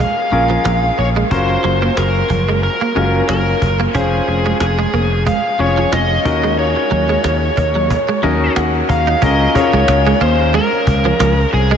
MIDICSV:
0, 0, Header, 1, 7, 480
1, 0, Start_track
1, 0, Key_signature, -5, "major"
1, 0, Tempo, 659341
1, 955, Time_signature, 4, 2, 24, 8
1, 8569, End_track
2, 0, Start_track
2, 0, Title_t, "Lead electric guitar"
2, 0, Program_c, 0, 29
2, 0, Note_on_c, 0, 77, 85
2, 717, Note_on_c, 0, 73, 79
2, 736, Note_off_c, 0, 77, 0
2, 782, Note_off_c, 0, 73, 0
2, 955, Note_on_c, 0, 72, 85
2, 1436, Note_on_c, 0, 70, 77
2, 1449, Note_off_c, 0, 72, 0
2, 1909, Note_off_c, 0, 70, 0
2, 1917, Note_on_c, 0, 70, 80
2, 2386, Note_off_c, 0, 70, 0
2, 2395, Note_on_c, 0, 70, 77
2, 2741, Note_off_c, 0, 70, 0
2, 2875, Note_on_c, 0, 68, 85
2, 3326, Note_off_c, 0, 68, 0
2, 3356, Note_on_c, 0, 68, 78
2, 3806, Note_off_c, 0, 68, 0
2, 3838, Note_on_c, 0, 77, 89
2, 4078, Note_on_c, 0, 73, 80
2, 4084, Note_off_c, 0, 77, 0
2, 4316, Note_off_c, 0, 73, 0
2, 4319, Note_on_c, 0, 75, 83
2, 4792, Note_off_c, 0, 75, 0
2, 4795, Note_on_c, 0, 73, 81
2, 6206, Note_off_c, 0, 73, 0
2, 6480, Note_on_c, 0, 77, 81
2, 6701, Note_off_c, 0, 77, 0
2, 6721, Note_on_c, 0, 75, 97
2, 6956, Note_off_c, 0, 75, 0
2, 6959, Note_on_c, 0, 73, 100
2, 7434, Note_off_c, 0, 73, 0
2, 7437, Note_on_c, 0, 72, 94
2, 7659, Note_off_c, 0, 72, 0
2, 7679, Note_on_c, 0, 70, 89
2, 8368, Note_off_c, 0, 70, 0
2, 8401, Note_on_c, 0, 68, 85
2, 8569, Note_off_c, 0, 68, 0
2, 8569, End_track
3, 0, Start_track
3, 0, Title_t, "Grand piano"
3, 0, Program_c, 1, 0
3, 0, Control_c, 1, 64, 127
3, 0, Note_on_c, 1, 61, 63
3, 0, Note_on_c, 1, 65, 60
3, 0, Note_on_c, 1, 68, 58
3, 0, Note_on_c, 1, 70, 72
3, 230, Note_off_c, 1, 61, 0
3, 230, Note_on_c, 1, 61, 69
3, 234, Note_off_c, 1, 65, 0
3, 234, Note_on_c, 1, 65, 64
3, 236, Note_off_c, 1, 68, 0
3, 236, Note_on_c, 1, 68, 65
3, 238, Note_off_c, 1, 70, 0
3, 238, Note_on_c, 1, 70, 75
3, 800, Note_off_c, 1, 61, 0
3, 802, Note_off_c, 1, 65, 0
3, 803, Note_off_c, 1, 68, 0
3, 804, Note_off_c, 1, 70, 0
3, 952, Note_on_c, 1, 61, 69
3, 955, Note_on_c, 1, 65, 64
3, 958, Note_on_c, 1, 66, 64
3, 959, Note_on_c, 1, 70, 74
3, 966, Control_c, 1, 64, 0
3, 1109, Control_c, 1, 64, 127
3, 1702, Note_off_c, 1, 61, 0
3, 1704, Note_off_c, 1, 65, 0
3, 1705, Note_off_c, 1, 66, 0
3, 1706, Note_off_c, 1, 70, 0
3, 2149, Note_on_c, 1, 61, 70
3, 2152, Note_on_c, 1, 65, 62
3, 2156, Note_on_c, 1, 66, 66
3, 2158, Note_on_c, 1, 70, 76
3, 2719, Note_off_c, 1, 61, 0
3, 2721, Note_off_c, 1, 65, 0
3, 2723, Note_off_c, 1, 66, 0
3, 2724, Note_off_c, 1, 70, 0
3, 2872, Note_on_c, 1, 61, 67
3, 2875, Note_on_c, 1, 65, 62
3, 2878, Note_on_c, 1, 68, 65
3, 2881, Note_on_c, 1, 72, 73
3, 2885, Control_c, 1, 64, 0
3, 3010, Control_c, 1, 64, 127
3, 3622, Note_off_c, 1, 61, 0
3, 3624, Note_off_c, 1, 65, 0
3, 3625, Note_off_c, 1, 68, 0
3, 3627, Note_off_c, 1, 72, 0
3, 4069, Note_on_c, 1, 61, 72
3, 4071, Note_on_c, 1, 65, 68
3, 4075, Note_on_c, 1, 68, 67
3, 4077, Note_on_c, 1, 73, 78
3, 4538, Note_off_c, 1, 61, 0
3, 4549, Note_on_c, 1, 61, 69
3, 4552, Note_on_c, 1, 63, 66
3, 4553, Note_off_c, 1, 65, 0
3, 4555, Note_off_c, 1, 68, 0
3, 4555, Note_on_c, 1, 66, 67
3, 4556, Note_off_c, 1, 73, 0
3, 4557, Note_on_c, 1, 70, 77
3, 4564, Control_c, 1, 64, 0
3, 4712, Control_c, 1, 64, 127
3, 5325, Note_off_c, 1, 61, 0
3, 5326, Note_off_c, 1, 63, 0
3, 5328, Note_off_c, 1, 66, 0
3, 5329, Note_off_c, 1, 70, 0
3, 5990, Note_on_c, 1, 61, 81
3, 5991, Note_on_c, 1, 63, 77
3, 5993, Note_on_c, 1, 75, 68
3, 5996, Note_on_c, 1, 66, 75
3, 5997, Note_on_c, 1, 70, 92
3, 6217, Note_off_c, 1, 75, 0
3, 6234, Note_on_c, 1, 78, 67
3, 6458, Note_off_c, 1, 78, 0
3, 6473, Note_on_c, 1, 82, 61
3, 6560, Note_off_c, 1, 61, 0
3, 6561, Note_off_c, 1, 63, 0
3, 6563, Note_off_c, 1, 66, 0
3, 6564, Note_off_c, 1, 70, 0
3, 6697, Note_off_c, 1, 82, 0
3, 6709, Note_on_c, 1, 61, 75
3, 6711, Note_on_c, 1, 65, 68
3, 6717, Note_on_c, 1, 68, 67
3, 6719, Note_on_c, 1, 70, 82
3, 6725, Control_c, 1, 64, 0
3, 6852, Control_c, 1, 64, 127
3, 6904, Note_off_c, 1, 61, 0
3, 6905, Note_off_c, 1, 65, 0
3, 6908, Note_off_c, 1, 68, 0
3, 6909, Note_off_c, 1, 70, 0
3, 6948, Note_on_c, 1, 61, 70
3, 6951, Note_on_c, 1, 65, 62
3, 6954, Note_on_c, 1, 68, 66
3, 6956, Note_on_c, 1, 70, 78
3, 7700, Note_off_c, 1, 61, 0
3, 7702, Note_off_c, 1, 65, 0
3, 7703, Note_off_c, 1, 68, 0
3, 7704, Note_off_c, 1, 70, 0
3, 8569, End_track
4, 0, Start_track
4, 0, Title_t, "Clean electric guitar"
4, 0, Program_c, 2, 27
4, 0, Note_on_c, 2, 56, 81
4, 88, Note_off_c, 2, 56, 0
4, 363, Note_on_c, 2, 53, 66
4, 442, Note_off_c, 2, 53, 0
4, 472, Note_on_c, 2, 53, 76
4, 568, Note_off_c, 2, 53, 0
4, 847, Note_on_c, 2, 56, 68
4, 924, Note_off_c, 2, 56, 0
4, 1194, Note_on_c, 2, 54, 73
4, 1289, Note_off_c, 2, 54, 0
4, 1326, Note_on_c, 2, 58, 74
4, 1404, Note_off_c, 2, 58, 0
4, 1675, Note_on_c, 2, 53, 69
4, 1770, Note_off_c, 2, 53, 0
4, 1809, Note_on_c, 2, 56, 66
4, 1886, Note_off_c, 2, 56, 0
4, 2048, Note_on_c, 2, 58, 73
4, 2125, Note_off_c, 2, 58, 0
4, 2156, Note_on_c, 2, 56, 70
4, 2250, Note_off_c, 2, 56, 0
4, 2393, Note_on_c, 2, 54, 72
4, 2488, Note_off_c, 2, 54, 0
4, 2764, Note_on_c, 2, 58, 69
4, 2842, Note_off_c, 2, 58, 0
4, 2873, Note_on_c, 2, 61, 81
4, 2968, Note_off_c, 2, 61, 0
4, 3245, Note_on_c, 2, 56, 81
4, 3323, Note_off_c, 2, 56, 0
4, 3484, Note_on_c, 2, 56, 73
4, 3562, Note_off_c, 2, 56, 0
4, 3594, Note_on_c, 2, 58, 73
4, 3689, Note_off_c, 2, 58, 0
4, 3833, Note_on_c, 2, 56, 83
4, 3928, Note_off_c, 2, 56, 0
4, 4205, Note_on_c, 2, 53, 68
4, 4283, Note_off_c, 2, 53, 0
4, 4314, Note_on_c, 2, 53, 81
4, 4408, Note_off_c, 2, 53, 0
4, 4685, Note_on_c, 2, 56, 69
4, 4763, Note_off_c, 2, 56, 0
4, 5031, Note_on_c, 2, 54, 76
4, 5127, Note_off_c, 2, 54, 0
4, 5164, Note_on_c, 2, 56, 74
4, 5242, Note_off_c, 2, 56, 0
4, 5513, Note_on_c, 2, 58, 70
4, 5608, Note_off_c, 2, 58, 0
4, 5645, Note_on_c, 2, 54, 60
4, 5723, Note_off_c, 2, 54, 0
4, 5886, Note_on_c, 2, 56, 70
4, 5964, Note_off_c, 2, 56, 0
4, 5993, Note_on_c, 2, 54, 68
4, 6088, Note_off_c, 2, 54, 0
4, 6233, Note_on_c, 2, 58, 78
4, 6328, Note_off_c, 2, 58, 0
4, 6605, Note_on_c, 2, 63, 65
4, 6683, Note_off_c, 2, 63, 0
4, 6712, Note_on_c, 2, 61, 90
4, 6807, Note_off_c, 2, 61, 0
4, 7087, Note_on_c, 2, 56, 83
4, 7164, Note_off_c, 2, 56, 0
4, 7328, Note_on_c, 2, 56, 83
4, 7405, Note_off_c, 2, 56, 0
4, 7433, Note_on_c, 2, 58, 86
4, 7528, Note_off_c, 2, 58, 0
4, 7674, Note_on_c, 2, 56, 90
4, 7769, Note_off_c, 2, 56, 0
4, 8047, Note_on_c, 2, 53, 69
4, 8124, Note_off_c, 2, 53, 0
4, 8154, Note_on_c, 2, 53, 88
4, 8249, Note_off_c, 2, 53, 0
4, 8527, Note_on_c, 2, 56, 75
4, 8569, Note_off_c, 2, 56, 0
4, 8569, End_track
5, 0, Start_track
5, 0, Title_t, "Fretless electric bass"
5, 0, Program_c, 3, 35
5, 233, Note_on_c, 3, 34, 92
5, 407, Note_off_c, 3, 34, 0
5, 475, Note_on_c, 3, 34, 93
5, 648, Note_off_c, 3, 34, 0
5, 715, Note_on_c, 3, 34, 82
5, 888, Note_off_c, 3, 34, 0
5, 954, Note_on_c, 3, 30, 96
5, 1127, Note_off_c, 3, 30, 0
5, 1195, Note_on_c, 3, 30, 90
5, 1368, Note_off_c, 3, 30, 0
5, 1435, Note_on_c, 3, 30, 91
5, 1608, Note_off_c, 3, 30, 0
5, 1674, Note_on_c, 3, 30, 88
5, 1942, Note_off_c, 3, 30, 0
5, 2156, Note_on_c, 3, 30, 87
5, 2329, Note_off_c, 3, 30, 0
5, 2394, Note_on_c, 3, 30, 91
5, 2567, Note_off_c, 3, 30, 0
5, 2635, Note_on_c, 3, 30, 87
5, 2808, Note_off_c, 3, 30, 0
5, 2872, Note_on_c, 3, 29, 98
5, 3046, Note_off_c, 3, 29, 0
5, 3114, Note_on_c, 3, 29, 87
5, 3287, Note_off_c, 3, 29, 0
5, 3353, Note_on_c, 3, 29, 87
5, 3527, Note_off_c, 3, 29, 0
5, 3592, Note_on_c, 3, 29, 88
5, 3861, Note_off_c, 3, 29, 0
5, 4072, Note_on_c, 3, 29, 89
5, 4246, Note_off_c, 3, 29, 0
5, 4313, Note_on_c, 3, 29, 92
5, 4487, Note_off_c, 3, 29, 0
5, 4552, Note_on_c, 3, 39, 90
5, 4899, Note_off_c, 3, 39, 0
5, 5034, Note_on_c, 3, 39, 91
5, 5207, Note_off_c, 3, 39, 0
5, 5274, Note_on_c, 3, 39, 94
5, 5447, Note_off_c, 3, 39, 0
5, 5513, Note_on_c, 3, 39, 92
5, 5782, Note_off_c, 3, 39, 0
5, 5995, Note_on_c, 3, 39, 88
5, 6168, Note_off_c, 3, 39, 0
5, 6235, Note_on_c, 3, 39, 91
5, 6408, Note_off_c, 3, 39, 0
5, 6474, Note_on_c, 3, 39, 87
5, 6647, Note_off_c, 3, 39, 0
5, 6714, Note_on_c, 3, 37, 98
5, 6887, Note_off_c, 3, 37, 0
5, 7084, Note_on_c, 3, 37, 86
5, 7163, Note_off_c, 3, 37, 0
5, 7193, Note_on_c, 3, 37, 93
5, 7366, Note_off_c, 3, 37, 0
5, 7431, Note_on_c, 3, 39, 86
5, 7700, Note_off_c, 3, 39, 0
5, 7914, Note_on_c, 3, 37, 90
5, 8087, Note_off_c, 3, 37, 0
5, 8153, Note_on_c, 3, 37, 111
5, 8326, Note_off_c, 3, 37, 0
5, 8395, Note_on_c, 3, 36, 85
5, 8568, Note_off_c, 3, 36, 0
5, 8569, End_track
6, 0, Start_track
6, 0, Title_t, "Cajon"
6, 236, Note_on_c, 9, 38, 39
6, 309, Note_off_c, 9, 38, 0
6, 475, Note_on_c, 9, 38, 106
6, 548, Note_off_c, 9, 38, 0
6, 718, Note_on_c, 9, 38, 33
6, 791, Note_off_c, 9, 38, 0
6, 955, Note_on_c, 9, 36, 97
6, 1027, Note_off_c, 9, 36, 0
6, 1090, Note_on_c, 9, 38, 27
6, 1163, Note_off_c, 9, 38, 0
6, 1196, Note_on_c, 9, 38, 38
6, 1269, Note_off_c, 9, 38, 0
6, 1435, Note_on_c, 9, 38, 103
6, 1508, Note_off_c, 9, 38, 0
6, 1674, Note_on_c, 9, 36, 84
6, 1747, Note_off_c, 9, 36, 0
6, 1914, Note_on_c, 9, 38, 44
6, 1987, Note_off_c, 9, 38, 0
6, 2155, Note_on_c, 9, 38, 38
6, 2228, Note_off_c, 9, 38, 0
6, 2393, Note_on_c, 9, 38, 111
6, 2466, Note_off_c, 9, 38, 0
6, 2634, Note_on_c, 9, 36, 92
6, 2707, Note_off_c, 9, 36, 0
6, 2874, Note_on_c, 9, 36, 94
6, 2947, Note_off_c, 9, 36, 0
6, 3007, Note_on_c, 9, 38, 30
6, 3079, Note_off_c, 9, 38, 0
6, 3115, Note_on_c, 9, 38, 38
6, 3187, Note_off_c, 9, 38, 0
6, 3352, Note_on_c, 9, 38, 102
6, 3425, Note_off_c, 9, 38, 0
6, 3594, Note_on_c, 9, 38, 36
6, 3667, Note_off_c, 9, 38, 0
6, 3834, Note_on_c, 9, 36, 90
6, 3906, Note_off_c, 9, 36, 0
6, 4073, Note_on_c, 9, 38, 40
6, 4146, Note_off_c, 9, 38, 0
6, 4314, Note_on_c, 9, 38, 111
6, 4386, Note_off_c, 9, 38, 0
6, 4554, Note_on_c, 9, 36, 99
6, 4626, Note_off_c, 9, 36, 0
6, 4794, Note_on_c, 9, 38, 44
6, 4866, Note_off_c, 9, 38, 0
6, 4926, Note_on_c, 9, 38, 30
6, 4999, Note_off_c, 9, 38, 0
6, 5033, Note_on_c, 9, 38, 40
6, 5106, Note_off_c, 9, 38, 0
6, 5272, Note_on_c, 9, 38, 102
6, 5345, Note_off_c, 9, 38, 0
6, 5513, Note_on_c, 9, 36, 82
6, 5586, Note_off_c, 9, 36, 0
6, 5754, Note_on_c, 9, 36, 91
6, 5827, Note_off_c, 9, 36, 0
6, 5992, Note_on_c, 9, 38, 37
6, 6065, Note_off_c, 9, 38, 0
6, 6234, Note_on_c, 9, 38, 113
6, 6306, Note_off_c, 9, 38, 0
6, 6475, Note_on_c, 9, 36, 93
6, 6548, Note_off_c, 9, 36, 0
6, 6714, Note_on_c, 9, 36, 103
6, 6787, Note_off_c, 9, 36, 0
6, 6955, Note_on_c, 9, 36, 91
6, 7028, Note_off_c, 9, 36, 0
6, 7194, Note_on_c, 9, 38, 104
6, 7266, Note_off_c, 9, 38, 0
6, 7435, Note_on_c, 9, 38, 40
6, 7508, Note_off_c, 9, 38, 0
6, 7675, Note_on_c, 9, 38, 47
6, 7748, Note_off_c, 9, 38, 0
6, 7808, Note_on_c, 9, 38, 32
6, 7881, Note_off_c, 9, 38, 0
6, 7913, Note_on_c, 9, 36, 98
6, 7986, Note_off_c, 9, 36, 0
6, 8155, Note_on_c, 9, 38, 120
6, 8228, Note_off_c, 9, 38, 0
6, 8569, End_track
7, 0, Start_track
7, 0, Title_t, "Muted clean electric guitar strokes"
7, 233, Note_on_c, 9, 29, 38
7, 305, Note_off_c, 9, 29, 0
7, 713, Note_on_c, 9, 29, 40
7, 785, Note_off_c, 9, 29, 0
7, 1087, Note_on_c, 9, 29, 43
7, 1160, Note_off_c, 9, 29, 0
7, 1436, Note_on_c, 9, 29, 42
7, 1509, Note_off_c, 9, 29, 0
7, 1917, Note_on_c, 9, 29, 41
7, 1990, Note_off_c, 9, 29, 0
7, 2632, Note_on_c, 9, 29, 40
7, 2705, Note_off_c, 9, 29, 0
7, 3115, Note_on_c, 9, 29, 42
7, 3187, Note_off_c, 9, 29, 0
7, 3354, Note_on_c, 9, 29, 44
7, 3427, Note_off_c, 9, 29, 0
7, 4072, Note_on_c, 9, 29, 40
7, 4145, Note_off_c, 9, 29, 0
7, 4553, Note_on_c, 9, 29, 39
7, 4626, Note_off_c, 9, 29, 0
7, 4924, Note_on_c, 9, 29, 46
7, 4997, Note_off_c, 9, 29, 0
7, 5274, Note_on_c, 9, 29, 45
7, 5346, Note_off_c, 9, 29, 0
7, 5755, Note_on_c, 9, 29, 40
7, 5827, Note_off_c, 9, 29, 0
7, 6472, Note_on_c, 9, 29, 38
7, 6544, Note_off_c, 9, 29, 0
7, 6953, Note_on_c, 9, 29, 48
7, 7026, Note_off_c, 9, 29, 0
7, 7195, Note_on_c, 9, 29, 44
7, 7268, Note_off_c, 9, 29, 0
7, 7915, Note_on_c, 9, 29, 41
7, 7988, Note_off_c, 9, 29, 0
7, 8393, Note_on_c, 9, 29, 44
7, 8465, Note_off_c, 9, 29, 0
7, 8569, End_track
0, 0, End_of_file